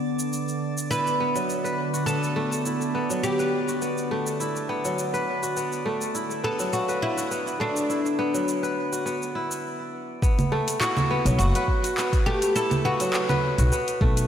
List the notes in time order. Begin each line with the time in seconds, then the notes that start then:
Already playing: D3 B3 D4 A4 D5
0.19 shaker
0.33 shaker
0.48 shaker
0.78 shaker
0.91 E4 B4, shaker
1.07 shaker
1.20 B3
1.35 F#3, shaker
1.50 shaker
1.64 B4, shaker
1.93 F#4, shaker
2.06 B3 A4, shaker
2.24 shaker
2.36 A3
2.52 shaker
2.66 E4, shaker
2.81 shaker
2.95 B3
3.10 F#3, shaker
3.23 G4, shaker
3.39 B4, shaker
3.68 F#4, shaker
3.82 B3, shaker
3.98 shaker
4.11 A3
4.27 shaker
4.40 E4, shaker
4.56 shaker
4.69 B3
4.85 F#3, shaker
4.99 shaker
5.14 B4, shaker
5.43 F#4, shaker
5.57 B3, shaker
5.72 shaker
5.86 A3
6.01 shaker
6.15 E4, shaker
6.31 shaker
6.44 B3 A4
6.59 F#3, shaker
6.73 F#4, shaker
6.89 B4, shaker
7.02 E4
7.17 F#4, shaker
7.31 B3, shaker
7.47 shaker
7.60 A3 D4
7.77 shaker
7.90 E4, shaker
8.06 shaker
8.19 B3
8.34 F#3, shaker
8.48 shaker
8.63 B4, shaker
8.92 F#4, shaker
9.06 B3, shaker
9.22 shaker
9.35 E4
9.51 shaker
10.22 B3, kick, shaker
10.39 closed hi-hat, low conga, shaker
10.52 A3
10.68 closed hi-hat, shaker
10.81 E4 F#4, clap, shaker
10.97 low conga, shaker
11.11 B3
11.25 B1 F#3, closed hi-hat, shaker
11.39 F#1 F#4, shaker
11.55 B4, closed hi-hat, shaker
11.68 kick
11.84 F#4, closed hi-hat, shaker
11.98 B3, clap, shaker
12.13 kick, closed hi-hat, shaker
12.26 A3 G4
12.42 closed hi-hat, shaker
12.56 E4 A4, shaker
12.71 closed hi-hat, low conga, shaker
12.85 B3 F#4
13.00 F#3, closed hi-hat, shaker
13.13 clap, shaker
13.29 B4, low conga, shaker
13.58 B1 F#4, closed hi-hat, shaker
13.72 B3, shaker
13.88 closed hi-hat, shaker
14.01 B1 A3, kick
14.17 closed hi-hat, shaker